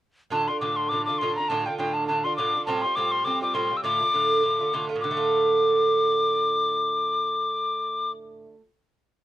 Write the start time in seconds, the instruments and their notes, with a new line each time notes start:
0.30 bouzouki A2 D3 D4 F4, tin whistle A5
0.48 bouzouki D3 D4 F4, tin whistle C6
0.60 bouzouki A2 D3 D4 F4, tin whistle D6
0.76 tin whistle C6
0.89 bouzouki A2 D3 D4, tin whistle D6
0.94 bouzouki F4
1.05 bouzouki D4 F4, tin whistle D6
1.10 bouzouki D3
1.18 bouzouki A2, tin whistle C6
1.22 bouzouki D3 D4 F4
1.36 bouzouki D4 F4, tin whistle A#5
1.40 bouzouki D3
1.48 bouzouki A2 D3 D4 F4, tin whistle A5
1.66 bouzouki D3 D4 F4, tin whistle G5
1.78 bouzouki A2 D3 D4 F4, tin whistle G5
1.93 tin whistle A5
2.07 bouzouki A2 D3 D4, tin whistle A5
2.11 bouzouki F4
2.24 bouzouki D3 D4 F4, tin whistle C6
2.36 bouzouki A2 D3 D4 F4, tin whistle D6
2.55 bouzouki D3 D4 F4
2.66 bouzouki A2 G3 C4 F4, tin whistle A5
2.82 bouzouki F4, tin whistle C6
2.86 bouzouki G3
2.95 bouzouki A2 G3 C4 F4, tin whistle D6
3.12 tin whistle C6
3.24 bouzouki A2 G3 C4 F4, tin whistle D6
3.41 bouzouki G3 C4 F4, tin whistle D6
3.54 bouzouki A2 G3 C4 F4, tin whistle C6
3.70 bouzouki G3 C4 F4
3.77 tin whistle E6
3.83 bouzouki A2 D3 A3 F4, tin whistle D6
4.00 bouzouki D3 A3 F4
4.14 bouzouki A2 D3 A3 F4
4.43 bouzouki A2 D3 A3 F4
4.59 bouzouki D3 A3 F4
4.73 bouzouki A2 D3 A3 F4
4.89 bouzouki D3 A3 F4
4.96 bouzouki A2
5.01 bouzouki D3, tin whistle D6
5.11 bouzouki A3
5.17 bouzouki F4